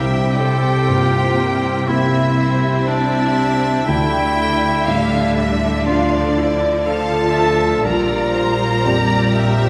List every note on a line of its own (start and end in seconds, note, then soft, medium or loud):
0.00 3.84 C2 soft
0.00 3.80 C3 soft
0.00 3.84 C3 medium
0.00 0.38 G3 soft
0.00 0.88 E4 soft
0.00 0.54 G4 soft
0.00 1.89 G4 medium
0.00 0.88 A#4 soft
0.00 0.38 E5 medium
0.00 1.85 G5 medium
0.23 4.13 C4 soft
0.38 0.88 A4 medium
0.38 1.88 C5 medium
0.55 1.21 G4 soft
0.88 2.48 G2 soft
0.88 1.89 A#3 medium
0.88 1.39 F4 medium
0.88 2.88 A#4 soft
1.38 4.88 E4 medium
1.88 3.92 G3 soft
1.88 3.84 A#3 soft
1.88 2.37 C4 medium
1.88 2.89 E4 medium
1.88 3.85 E4 soft
1.88 3.85 G4 soft
1.88 2.37 E5 medium
1.88 2.89 E5 medium
2.38 3.86 C4 medium
2.38 2.88 C5 soft
2.56 3.21 G4 soft
2.87 3.90 D4 medium
2.87 3.89 D5 medium
2.87 3.88 E5 medium
3.22 3.92 G4 soft
3.87 7.86 D2 medium
3.87 7.82 D2 medium
3.87 7.85 D3 medium
3.87 7.80 D3 medium
3.87 4.86 A3 medium
3.87 5.60 E4 medium
3.87 5.83 E5 medium
3.87 4.87 G5 medium
4.23 5.54 D4 soft
4.87 6.47 A2 soft
4.87 5.87 G3 medium
4.87 5.85 D4 medium
4.87 6.86 A4 soft
4.87 5.37 F5 medium
5.36 5.85 E5 medium
5.56 6.20 D4 soft
5.85 6.85 F3 medium
5.85 7.82 A3 soft
5.85 7.90 A3 soft
5.85 7.82 D4 soft
5.85 6.36 D4 medium
5.85 6.33 F4 medium
5.85 7.82 F4 soft
5.85 6.85 D5 medium
5.85 6.37 F5 medium
6.22 7.51 D4 soft
6.37 6.86 E4 medium
6.54 7.19 F4 soft
6.85 7.84 F3 medium
6.85 7.85 F4 medium
6.85 7.86 A4 medium
6.85 7.90 A4 soft
6.85 7.35 F5 medium
6.85 7.83 A5 medium
7.20 8.51 F4 soft
7.34 7.85 E5 medium
7.53 7.90 D4 soft
7.84 9.69 A#1 medium
7.84 9.69 A#2 medium
7.84 9.69 G3 medium
7.84 8.84 F4 medium
7.84 9.69 A#4 medium
7.84 8.34 D5 medium
7.84 9.69 A#5 medium
8.18 9.51 C4 soft
8.35 8.85 C5 medium
8.52 9.17 F4 soft
8.85 9.69 F2 soft
8.85 9.69 A#3 soft
8.85 9.69 G4 medium
8.85 9.36 D5 medium
9.18 9.69 F4 soft
9.36 9.69 E5 medium
9.52 9.69 C4 soft